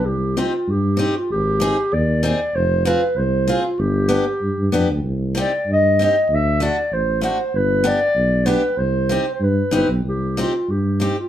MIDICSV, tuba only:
0, 0, Header, 1, 2, 480
1, 0, Start_track
1, 0, Key_signature, -3, "minor"
1, 0, Tempo, 623053
1, 45, Time_signature, 2, 2, 24, 8
1, 6765, Tempo, 636267
1, 8655, End_track
2, 0, Start_track
2, 0, Title_t, "Tuba"
2, 0, Program_c, 0, 58
2, 38, Note_on_c, 0, 36, 64
2, 357, Note_off_c, 0, 36, 0
2, 521, Note_on_c, 0, 43, 69
2, 838, Note_off_c, 0, 43, 0
2, 1010, Note_on_c, 0, 32, 71
2, 1324, Note_off_c, 0, 32, 0
2, 1484, Note_on_c, 0, 39, 82
2, 1799, Note_off_c, 0, 39, 0
2, 1957, Note_on_c, 0, 29, 77
2, 2271, Note_off_c, 0, 29, 0
2, 2435, Note_on_c, 0, 36, 78
2, 2747, Note_off_c, 0, 36, 0
2, 2913, Note_on_c, 0, 31, 79
2, 3228, Note_off_c, 0, 31, 0
2, 3399, Note_on_c, 0, 43, 57
2, 3479, Note_off_c, 0, 43, 0
2, 3531, Note_on_c, 0, 43, 70
2, 3637, Note_off_c, 0, 43, 0
2, 3645, Note_on_c, 0, 41, 58
2, 3754, Note_off_c, 0, 41, 0
2, 3768, Note_on_c, 0, 38, 69
2, 3872, Note_off_c, 0, 38, 0
2, 3876, Note_on_c, 0, 36, 64
2, 4198, Note_off_c, 0, 36, 0
2, 4367, Note_on_c, 0, 43, 66
2, 4685, Note_off_c, 0, 43, 0
2, 4847, Note_on_c, 0, 38, 80
2, 5161, Note_off_c, 0, 38, 0
2, 5328, Note_on_c, 0, 33, 62
2, 5640, Note_off_c, 0, 33, 0
2, 5804, Note_on_c, 0, 31, 70
2, 6115, Note_off_c, 0, 31, 0
2, 6278, Note_on_c, 0, 35, 69
2, 6592, Note_off_c, 0, 35, 0
2, 6756, Note_on_c, 0, 36, 73
2, 7070, Note_off_c, 0, 36, 0
2, 7233, Note_on_c, 0, 43, 75
2, 7393, Note_off_c, 0, 43, 0
2, 7464, Note_on_c, 0, 31, 65
2, 7581, Note_off_c, 0, 31, 0
2, 7592, Note_on_c, 0, 35, 70
2, 7706, Note_off_c, 0, 35, 0
2, 7714, Note_on_c, 0, 36, 65
2, 8031, Note_off_c, 0, 36, 0
2, 8203, Note_on_c, 0, 43, 64
2, 8515, Note_off_c, 0, 43, 0
2, 8655, End_track
0, 0, End_of_file